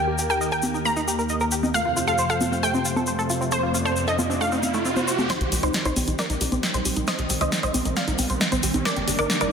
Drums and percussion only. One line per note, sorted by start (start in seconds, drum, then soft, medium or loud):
0.18 shaker medium
0.30 shaker soft
0.41 shaker soft
0.52 shaker soft
0.63 high conga medium
0.63 shaker medium
0.74 shaker soft
0.85 shaker soft
0.97 shaker soft
1.08 shaker medium
1.19 shaker soft
1.29 shaker soft
1.40 shaker soft
1.51 shaker medium
1.63 high conga medium
1.63 shaker soft
1.75 shaker soft
1.97 shaker medium
2.07 shaker soft
2.18 shaker soft
2.30 shaker soft
2.41 high conga medium
2.41 shaker medium
2.53 shaker soft
2.63 shaker soft
2.74 shaker soft
2.85 shaker medium
2.96 high conga medium
2.96 shaker soft
3.07 shaker soft
3.19 shaker soft
3.30 shaker medium
3.41 shaker soft
3.52 shaker soft
3.75 shaker medium
3.86 shaker soft
3.96 shaker soft
4.08 shaker soft
4.19 high conga medium
4.19 shaker medium
4.31 shaker soft
4.41 shaker soft
4.52 shaker soft
4.63 high conga medium
4.63 shaker medium
4.74 shaker soft
4.85 shaker soft
4.96 high conga medium
4.96 shaker soft
5.08 shaker medium
5.18 high conga medium
5.18 shaker soft
5.30 snare soft
5.30 closed hi-hat medium
5.30 shaker medium
5.41 closed hi-hat soft
5.52 open hi-hat medium
5.52 shaker medium
5.63 closed hi-hat medium
5.63 shaker soft
5.74 snare soft
5.74 closed hi-hat medium
5.74 shaker soft
5.85 closed hi-hat medium
5.85 shaker soft
5.96 open hi-hat loud
5.96 high conga medium
5.96 shaker medium
6.08 closed hi-hat soft
6.08 shaker soft
6.19 snare soft
6.19 closed hi-hat medium
6.19 shaker medium
6.30 closed hi-hat medium
6.30 shaker soft
6.41 open hi-hat loud
6.41 shaker medium
6.52 closed hi-hat soft
6.52 high conga medium
6.52 shaker soft
6.63 snare soft
6.63 closed hi-hat medium
6.63 shaker soft
6.74 closed hi-hat medium
6.74 shaker soft
6.85 open hi-hat loud
6.85 shaker medium
6.96 closed hi-hat medium
6.96 shaker soft
7.07 snare soft
7.07 closed hi-hat medium
7.07 shaker medium
7.19 closed hi-hat soft
7.30 open hi-hat loud
7.30 shaker medium
7.41 closed hi-hat medium
7.41 shaker soft
7.52 snare soft
7.52 closed hi-hat medium
7.52 shaker medium
7.63 closed hi-hat soft
7.63 shaker soft
7.74 open hi-hat loud
7.74 high conga medium
7.74 shaker medium
7.85 closed hi-hat soft
7.85 shaker soft
7.97 snare medium
7.97 closed hi-hat medium
7.97 shaker soft
8.08 closed hi-hat soft
8.08 shaker soft
8.19 open hi-hat loud
8.19 high conga medium
8.19 shaker medium
8.30 closed hi-hat soft
8.30 shaker soft
8.41 snare medium
8.41 closed hi-hat medium
8.41 shaker soft
8.52 closed hi-hat medium
8.52 high conga medium
8.52 shaker soft
8.63 open hi-hat loud
8.63 shaker medium
8.74 closed hi-hat medium
8.74 high conga medium
8.74 shaker soft
8.85 snare medium
8.85 closed hi-hat medium
8.85 shaker medium
8.96 closed hi-hat soft
9.08 open hi-hat loud
9.08 shaker medium
9.19 closed hi-hat soft
9.19 shaker soft
9.30 snare medium
9.30 closed hi-hat medium
9.30 shaker soft
9.41 closed hi-hat soft
9.41 shaker soft